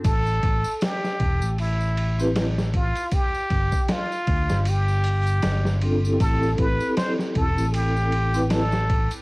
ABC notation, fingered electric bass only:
X:1
M:4/4
L:1/16
Q:"Swing 16ths" 1/4=78
K:Am
V:1 name="Fingered electric bass" clef=bass
A,,,2 A,,, z3 E,,, A,,,8 z | z2 G,,, z3 D,, G,,,4- G,,, G,,,4 | A,,,2 A,,, z3 E,,, A,,,8 z |]